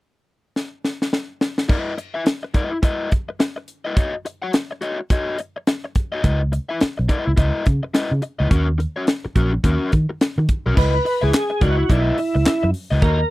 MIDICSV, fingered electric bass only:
0, 0, Header, 1, 3, 480
1, 0, Start_track
1, 0, Tempo, 566572
1, 1438, Time_signature, 4, 2, 24, 8
1, 11270, End_track
2, 0, Start_track
2, 0, Title_t, "Fingered electric bass"
2, 0, Program_c, 0, 33
2, 5288, Note_on_c, 0, 37, 87
2, 5570, Note_off_c, 0, 37, 0
2, 5924, Note_on_c, 0, 35, 71
2, 5990, Note_off_c, 0, 35, 0
2, 6162, Note_on_c, 0, 37, 74
2, 6229, Note_off_c, 0, 37, 0
2, 6250, Note_on_c, 0, 37, 99
2, 6355, Note_off_c, 0, 37, 0
2, 6497, Note_on_c, 0, 49, 72
2, 6599, Note_off_c, 0, 49, 0
2, 6874, Note_on_c, 0, 49, 82
2, 6944, Note_off_c, 0, 49, 0
2, 7117, Note_on_c, 0, 37, 81
2, 7185, Note_off_c, 0, 37, 0
2, 7210, Note_on_c, 0, 39, 89
2, 7492, Note_off_c, 0, 39, 0
2, 7928, Note_on_c, 0, 34, 86
2, 8104, Note_off_c, 0, 34, 0
2, 8168, Note_on_c, 0, 39, 91
2, 8273, Note_off_c, 0, 39, 0
2, 8413, Note_on_c, 0, 51, 67
2, 8516, Note_off_c, 0, 51, 0
2, 8792, Note_on_c, 0, 51, 92
2, 8861, Note_off_c, 0, 51, 0
2, 9033, Note_on_c, 0, 35, 80
2, 9101, Note_off_c, 0, 35, 0
2, 9128, Note_on_c, 0, 37, 97
2, 9302, Note_off_c, 0, 37, 0
2, 9511, Note_on_c, 0, 37, 83
2, 9579, Note_off_c, 0, 37, 0
2, 9842, Note_on_c, 0, 37, 94
2, 10017, Note_off_c, 0, 37, 0
2, 10080, Note_on_c, 0, 35, 98
2, 10255, Note_off_c, 0, 35, 0
2, 10466, Note_on_c, 0, 37, 76
2, 10534, Note_off_c, 0, 37, 0
2, 10706, Note_on_c, 0, 42, 86
2, 10774, Note_off_c, 0, 42, 0
2, 10942, Note_on_c, 0, 37, 89
2, 11010, Note_off_c, 0, 37, 0
2, 11034, Note_on_c, 0, 39, 92
2, 11209, Note_off_c, 0, 39, 0
2, 11270, End_track
3, 0, Start_track
3, 0, Title_t, "Muted fingered electric bass strokes"
3, 5781, Note_on_c, 9, 29, 45
3, 5866, Note_off_c, 9, 29, 0
3, 7839, Note_on_c, 9, 29, 43
3, 7924, Note_off_c, 9, 29, 0
3, 11270, End_track
0, 0, End_of_file